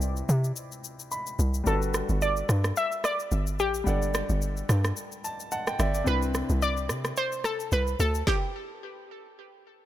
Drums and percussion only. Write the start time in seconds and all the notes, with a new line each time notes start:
0.01 shaker
0.16 shaker
0.29 shaker
0.44 shaker
0.56 shaker
0.72 shaker
0.84 shaker
0.99 shaker
1.11 shaker
1.27 shaker
1.39 shaker
1.54 shaker
1.66 shaker
1.82 shaker
1.94 cross-stick, shaker
2.09 shaker
2.22 shaker
2.37 shaker
2.49 cross-stick, shaker
2.64 cross-stick, shaker
2.76 shaker
2.92 shaker
3.04 cross-stick, shaker
3.20 shaker
3.32 shaker
3.47 shaker
3.59 shaker
3.74 shaker
3.87 shaker
4.02 shaker
4.14 cross-stick, shaker
4.29 shaker
4.42 shaker
4.57 shaker
4.69 cross-stick, shaker
4.85 cross-stick, shaker
4.97 shaker
5.12 shaker
5.24 shaker
5.40 shaker
5.52 shaker
5.67 cross-stick, shaker
5.79 cross-stick, shaker
5.94 shaker
6.07 shaker
6.22 shaker
6.34 cross-stick, shaker
6.49 shaker
6.62 shaker
6.77 shaker
6.89 cross-stick, shaker
7.05 cross-stick, shaker
7.17 shaker
7.32 shaker
7.44 cross-stick, shaker
7.60 shaker
7.72 shaker
7.87 shaker
8.00 shaker
8.14 shaker
8.27 kick, snare